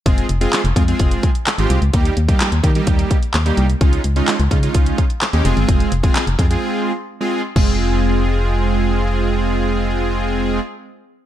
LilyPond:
<<
  \new Staff \with { instrumentName = "Analog polysynth" } { \time 4/4 \key f \minor \tempo 4 = 128 <aes c' f' aes'>8 r16 <aes c' f' aes'>8 r16 <aes c' f' aes'>16 <aes c' f' aes'>4 r8 <aes c' f' g'>8 r16 | <g bes ees' g'>8 r16 <g bes ees' g'>8 r16 <g bes ees' g'>16 <g bes ees' g'>4 r8 <g bes ees' g'>8 r16 | <aes des' ees' f'>8 r16 <aes des' ees' f'>8 r16 <aes des' ees' f'>16 <aes des' ees' f'>4 r8 <aes des' ees' g'>16 <aes c' f' aes'>8~ | <aes c' f' aes'>8 r16 <aes c' f' aes'>8 r16 <aes c' f' aes'>16 <aes c' f' aes'>4 r8 <aes c' f' aes'>8 r16 |
<aes c' f' aes'>1~ | <aes c' f' aes'>1 | }
  \new Staff \with { instrumentName = "FM bass" } { \clef bass \time 4/4 \key f \minor f,,8 f,,8 r16 f,,16 f,8 f,,8 r8. aes,,16 c,16 des,16 | ees,8 ees,8 r16 ees,16 ees8 ees,8 r8 ees,8 c,8 | des,8 des,8 r16 des,16 des8 des,8 r8. ees,16 f,,16 g,,16 | f,,8 f,,8 r16 f,,16 f,8 r2 |
f,,1~ | f,,1 | }
  \new DrumStaff \with { instrumentName = "Drums" } \drummode { \time 4/4 <hh bd>16 hh16 hh16 hh16 <hc hh sn>16 hh16 <hh bd>16 hh16 <hh bd>16 hh16 <hh bd>16 hh16 <hc hh sn>16 hh16 hh16 hh16 | <hh bd>16 hh16 hh16 <hh bd>16 <hc hh sn>16 hh16 <hh bd>16 hh16 <hh bd>16 hh16 <hh bd>16 hh16 <hc hh sn>16 hh16 hh16 hh16 | <hh bd>16 hh16 hh16 hh16 <hc hh sn>16 hh16 <hh bd>16 hh16 <hh bd>16 hh16 <hh bd>16 hh16 <hc hh sn>16 hh16 hh16 hh16 | <hh bd>16 hh16 hh16 <hh bd>16 <hc hh sn>16 hh16 <hh bd>16 hh16 r4 r4 |
<cymc bd>4 r4 r4 r4 | r4 r4 r4 r4 | }
>>